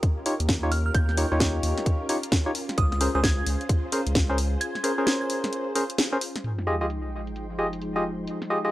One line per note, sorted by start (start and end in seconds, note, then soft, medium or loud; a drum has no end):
0.00 6.40 C#4 medium
0.00 6.40 F4 medium
0.00 2.74 G4 medium
0.00 2.74 A#4 medium
0.00 kick loud
0.00 closed hi-hat medium
0.26 0.34 D#4 medium
0.26 0.34 F4 medium
0.26 0.34 G4 medium
0.26 0.34 C#5 loud
0.26 open hi-hat loud
0.40 0.90 D#2 loud
0.40 closed hi-hat medium
0.49 kick loud
0.49 snare loud
0.49 closed hi-hat medium
0.63 0.71 D#4 medium
0.63 0.71 F4 medium
0.63 0.71 G4 medium
0.63 0.71 C#5 loud
0.72 0.81 F6 medium
0.72 open hi-hat medium
0.86 0.91 F6 medium
0.94 1.25 D#2 medium
0.94 1.32 G6 medium
0.94 kick loud
0.94 closed hi-hat medium
1.09 snare soft
1.17 1.26 D#4 medium
1.17 1.26 F4 medium
1.17 1.26 G4 medium
1.17 1.26 C#5 loud
1.17 open hi-hat loud
1.32 1.59 D#2 loud
1.32 2.07 D#4 medium
1.32 2.07 F4 medium
1.32 2.07 G4 medium
1.32 2.07 C#5 loud
1.40 kick loud
1.40 snare loud
1.40 closed hi-hat medium
1.63 1.73 D#2 medium
1.63 open hi-hat loud
1.78 snare soft
1.78 closed hi-hat soft
1.86 kick loud
1.86 closed hi-hat medium
2.09 2.17 D#4 medium
2.09 2.17 F4 medium
2.09 2.17 G4 medium
2.09 2.17 C#5 loud
2.09 open hi-hat loud
2.23 closed hi-hat medium
2.32 kick loud
2.32 snare loud
2.32 closed hi-hat medium
2.46 2.51 D#4 medium
2.46 2.51 F4 medium
2.46 2.51 G4 medium
2.46 2.51 C#5 loud
2.55 open hi-hat loud
2.69 snare soft
2.69 closed hi-hat soft
2.78 3.08 C#2 loud
2.78 6.40 G#4 medium
2.78 6.40 C5 medium
2.78 2.87 D#6 medium
2.78 kick loud
2.78 closed hi-hat medium
2.92 2.98 D#6 medium
2.92 snare soft
3.01 3.09 C#4 loud
3.01 3.09 G#4 medium
3.01 3.09 A#4 medium
3.01 3.09 C5 loud
3.01 3.10 D#6 medium
3.01 open hi-hat loud
3.15 3.42 C#2 loud
3.15 3.20 C#4 medium
3.15 3.20 G#4 medium
3.15 3.20 A#4 medium
3.15 3.20 C5 loud
3.15 3.20 D#6 medium
3.24 3.40 G#6 medium
3.24 kick loud
3.24 snare loud
3.24 closed hi-hat medium
3.46 3.57 C#2 medium
3.46 open hi-hat loud
3.61 closed hi-hat soft
3.69 kick loud
3.69 closed hi-hat medium
3.92 4.01 C#4 medium
3.92 4.01 G#4 medium
3.92 4.01 A#4 medium
3.92 4.01 C5 loud
3.92 open hi-hat loud
4.07 4.57 C#2 loud
4.07 closed hi-hat medium
4.15 kick loud
4.15 snare loud
4.15 closed hi-hat medium
4.29 4.37 C#4 loud
4.29 4.37 G#4 medium
4.29 4.37 A#4 medium
4.29 4.38 C5 loud
4.38 open hi-hat loud
4.61 4.78 G#6 medium
4.61 closed hi-hat medium
4.75 snare soft
4.84 4.92 C#4 medium
4.84 4.92 G#4 medium
4.84 4.92 A#4 medium
4.84 4.92 C5 loud
4.84 5.01 G#6 medium
4.84 open hi-hat loud
4.98 5.73 C#4 medium
4.98 5.73 G#4 medium
4.98 5.73 A#4 medium
4.98 5.73 C5 loud
5.07 5.16 G#6 medium
5.07 snare loud
5.07 closed hi-hat medium
5.21 5.27 G#6 medium
5.30 open hi-hat loud
5.44 snare soft
5.44 closed hi-hat soft
5.53 closed hi-hat medium
5.75 5.84 C#4 medium
5.75 5.84 G#4 medium
5.75 5.84 A#4 medium
5.75 5.84 C5 loud
5.75 open hi-hat loud
5.90 closed hi-hat medium
5.98 snare loud
5.98 closed hi-hat medium
6.12 6.18 C#4 medium
6.12 6.18 G#4 medium
6.12 6.18 A#4 medium
6.12 6.18 C5 loud
6.21 open hi-hat loud
6.36 snare medium
6.36 closed hi-hat soft
6.44 8.71 F3 medium
6.44 8.71 G#3 medium
6.44 8.71 D#4 medium
6.44 8.71 G5 medium
6.44 8.71 C6 medium
6.44 closed hi-hat medium
6.44 sub drop medium
6.58 snare soft
6.67 6.75 F4 medium
6.67 6.75 G4 medium
6.67 6.75 G#4 medium
6.67 6.75 D#5 loud
6.81 6.86 F4 medium
6.81 6.86 G4 medium
6.81 6.86 G#4 medium
6.81 6.86 D#5 medium
6.90 closed hi-hat medium
7.27 closed hi-hat soft
7.36 closed hi-hat medium
7.59 7.67 F4 medium
7.59 7.67 G4 medium
7.59 7.67 G#4 medium
7.59 7.67 D#5 loud
7.73 closed hi-hat medium
7.82 closed hi-hat medium
7.96 8.04 F4 medium
7.96 8.04 G4 medium
7.96 8.04 G#4 medium
7.96 8.04 D#5 loud
8.27 closed hi-hat medium
8.42 snare soft
8.50 8.59 F4 medium
8.50 8.59 G4 medium
8.50 8.59 G#4 medium
8.50 8.59 D#5 loud
8.65 8.71 F4 medium
8.65 8.71 G4 medium
8.65 8.71 G#4 medium
8.65 8.71 D#5 loud